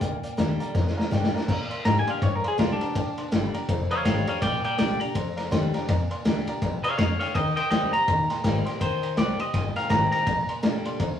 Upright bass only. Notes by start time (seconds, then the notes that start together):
0.01 D2
0.24 muted upright bass stroke
0.38 D#2
0.60 muted upright bass stroke
0.75 F2
0.97 muted upright bass stroke
1.11 G2
1.34 muted upright bass stroke
1.48 A#2
1.70 muted upright bass stroke
1.85 G#2
2.07 muted upright bass stroke
2.22 G2
2.45 muted upright bass stroke
2.59 C2
2.81 muted upright bass stroke
2.96 A#1
3.18 muted upright bass stroke
3.33 G1
3.54 muted upright bass stroke
3.69 F1
3.91 muted upright bass stroke
4.05 G#1
4.28 muted upright bass stroke
4.42 A#1
4.65 muted upright bass stroke
4.79 C2
5.01 muted upright bass stroke
5.15 D2
5.38 muted upright bass stroke
5.52 D#2
5.75 muted upright bass stroke
5.88 F2
6.11 muted upright bass stroke
6.25 D2
6.48 muted upright bass stroke
6.62 A#1
6.84 muted upright bass stroke
6.98 F2
7.21 muted upright bass stroke
7.35 D#2
7.57 muted upright bass stroke
7.71 D2
7.93 muted upright bass stroke
8.08 D#2
8.30 muted upright bass stroke
8.45 G#1
8.67 muted upright bass stroke
8.81 A#1
9.03 muted upright bass stroke
9.17 C2
9.39 muted upright bass stroke
9.54 G1
9.76 muted upright bass stroke
9.90 G#1
10.13 muted upright bass stroke
10.27 A#1
10.49 muted upright bass stroke
10.63 C2
10.85 muted upright bass stroke
11.00 D2